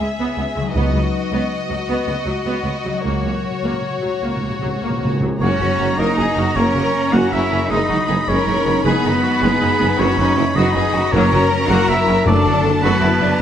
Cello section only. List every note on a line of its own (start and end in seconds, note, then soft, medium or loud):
0.19 0.26 C#2 medium
0.38 0.45 C#2 soft
0.57 0.64 C#2 soft
0.75 0.83 C#2 medium
0.94 1.02 C#2 soft
1.32 1.39 C#2 medium
1.70 1.77 C#2 soft
1.88 1.96 C#2 medium
2.07 2.15 C#2 soft
2.26 2.34 C#2 soft
2.45 2.53 C#2 medium
2.64 2.72 C#2 soft
2.85 2.93 C#2 soft
3.04 3.12 C#2 soft
3.24 3.32 C#2 soft
3.64 3.72 C#2 soft
4.03 4.11 C#2 soft
4.22 4.30 C#2 soft
4.42 4.50 C#2 soft
4.62 4.70 C#2 soft
4.82 4.90 C#2 soft
5.02 5.10 C#2 soft
5.21 5.29 C#2 soft
5.41 5.95 C#4 medium
5.99 6.56 D#4 medium
6.56 7.12 C#4 medium
7.13 7.32 F#4 medium
7.32 7.70 E4 medium
7.70 8.28 D#4 medium
8.28 8.84 C#4 medium
8.85 9.97 B3 medium
9.99 10.56 C#4 medium
10.56 11.12 D#4 medium
11.13 11.69 C#4 medium
11.70 11.89 F#4 loud
11.89 12.27 E4 medium
12.27 12.82 D4 medium
12.83 13.40 B3 medium